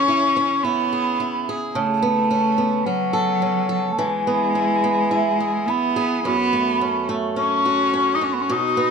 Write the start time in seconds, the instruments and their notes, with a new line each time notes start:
Already playing: steel-string acoustic guitar C#3 E3 C#4 G#4, cello C#4, flute C#6
0.08 steel-string acoustic guitar E4
0.37 steel-string acoustic guitar C#4
0.63 cello B3, steel-string acoustic guitar E4, flute B5
0.93 steel-string acoustic guitar G#4
1.20 steel-string acoustic guitar E4
1.49 steel-string acoustic guitar G#4
1.74 steel-string acoustic guitar C#3, cello A3, flute A5
2.02 steel-string acoustic guitar B3
2.31 steel-string acoustic guitar C#4
2.58 steel-string acoustic guitar B3
2.85 cello F#3, steel-string acoustic guitar C#4, flute F#5
3.13 steel-string acoustic guitar A4
3.42 steel-string acoustic guitar C#4
3.69 steel-string acoustic guitar A4
3.90 cello A3, flute A5
3.97 steel-string acoustic guitar E3, cello G#3, flute G#5
4.27 steel-string acoustic guitar B3
4.55 steel-string acoustic guitar E4
4.84 steel-string acoustic guitar B3
5.11 steel-string acoustic guitar E4
5.40 steel-string acoustic guitar G#4
5.67 cello B3, steel-string acoustic guitar E4, flute B5
5.96 steel-string acoustic guitar G#4
6.24 steel-string acoustic guitar F#2, cello B3, flute B5
6.53 steel-string acoustic guitar A3
6.81 steel-string acoustic guitar C#4
7.09 steel-string acoustic guitar A3
7.36 steel-string acoustic guitar C#4, cello C#4, flute C#6
7.66 steel-string acoustic guitar F#4
7.94 steel-string acoustic guitar C#4
8.14 cello D#4, flute D#6
8.21 cello C#4, steel-string acoustic guitar F#4, flute C#6
8.33 cello B3, flute B5
8.40 cello C#4, flute C#6
8.50 steel-string acoustic guitar B2, cello D#4, flute D#6
8.77 steel-string acoustic guitar B3